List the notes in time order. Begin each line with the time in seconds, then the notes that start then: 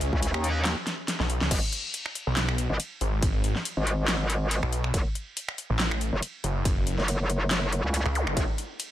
Already playing: C#2 C#4 G#4 B4 D#5 E5
0.01 closed hi-hat
0.13 C#2, kick
0.23 closed hi-hat, ride
0.34 D#2, finger snap
0.44 closed hi-hat
0.65 snare, clap, closed hi-hat, ride
0.87 snare, closed hi-hat
1.08 snare, closed hi-hat, ride
1.20 B1, snare
1.30 closed hi-hat
1.41 C#2, snare
1.51 G#1, kick, closed hi-hat, crash, ride
1.73 closed hi-hat
1.94 closed hi-hat, ride
2.06 finger snap
2.15 closed hi-hat
2.27 B1
2.37 snare, clap, closed hi-hat, ride
2.49 finger snap
2.58 closed hi-hat
2.70 G#1
2.80 closed hi-hat, ride
3.01 G#1, closed hi-hat
3.23 kick, closed hi-hat, ride
3.44 G#1, closed hi-hat
3.56 snare
3.65 closed hi-hat, ride
3.77 G#1
3.87 closed hi-hat
4.08 snare, clap, closed hi-hat, ride
4.30 closed hi-hat
4.51 closed hi-hat, ride
4.63 B1, finger snap
4.73 closed hi-hat
4.84 finger snap
4.94 F#1, kick, closed hi-hat, ride
5.15 closed hi-hat
5.37 closed hi-hat, ride
5.49 finger snap
5.58 closed hi-hat
5.70 A1
5.80 snare, clap, closed hi-hat, ride
5.91 finger snap
6.01 closed hi-hat
6.13 F#1
6.23 closed hi-hat, ride
6.44 F#1, closed hi-hat
6.65 kick, closed hi-hat, ride
6.87 F#1, closed hi-hat
6.98 F#1, snare
7.08 closed hi-hat, ride
7.20 F#1
7.30 closed hi-hat
7.51 snare, clap, closed hi-hat, ride
7.72 closed hi-hat
7.84 C#2
7.94 closed hi-hat, ride
8.06 C#2, finger snap
8.15 closed hi-hat, zap
8.27 F#1, finger snap
8.37 A1, kick, closed hi-hat, ride
8.58 closed hi-hat
8.80 closed hi-hat, ride